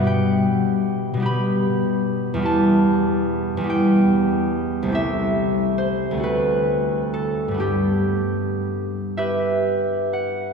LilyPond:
<<
  \new Staff \with { instrumentName = "Harp" } { \time 6/8 \key g \major \tempo 4. = 48 << { <fis'' g''>4. b''4. | a''4. g''4. | e''4 c''8 b'4 a'8 | g'4. e''4 fis''8 | } \\ { r2. | r2. | r2. | r4. <g' b'>4. | } >> }
  \new Staff \with { instrumentName = "Harp" } { \time 6/8 \key g \major <b, g b g'>4. <b, g b g'>4. | <e, g b g'>4. <e, g b g'>4. | <c, a c' g'>4. <d, a c' fis'>4. | <g, g b d'>2. | }
>>